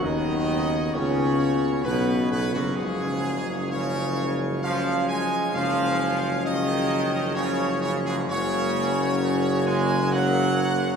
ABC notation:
X:1
M:3/4
L:1/16
Q:1/4=66
K:C#mix
V:1 name="Trumpet section"
d4 c4 B2 B F | G4 c4 e2 g2 | e4 d4 c2 c G | c6 g2 f4 |]
V:2 name="Pipe organ"
[C,B,Fc]12 | [C,G,Ec]12 | [C,G,Ec]12 | [C,A,Fc]12 |]
V:3 name="French horn section"
D4 C4 B,2 B, F, | [E,C]4 [E,C]4 [E,C]4 | [E,C]8 [E,C]4 | [A,C]8 [A,C]4 |]
V:4 name="Trombone section" clef=bass
D,4 C,4 B,,2 B,, F,, | G,,4 C,4 E,2 G,2 | E,4 D,4 C,2 C, G,, | C,6 G,2 F,4 |]
V:5 name="Tuba" clef=bass
D,,4 C,,4 B,,,2 B,,, F,,, | F,,,12 | F,,,12 | F,,,12 |]